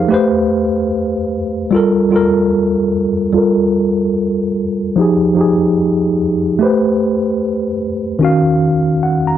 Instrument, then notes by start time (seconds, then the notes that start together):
tine electric piano
Already playing: F3 D#4 G4 G#4 A#4 C5 F5
0.09 A3 G4 B4
0.14 C5
1.71 G3 F4 A4
1.76 A#4
2.10 G3 F4 A4
2.16 A#4
3.32 G3 F4 A4
3.38 A#4
4.96 F3 D#4 G4
5.02 G#4
5.35 F3 D#4 G4
5.41 G#4
6.59 A3 G4 B4
6.64 C5
8.19 D#3 C#4 F#4
8.24 F5
9.03 F#5
9.27 A#5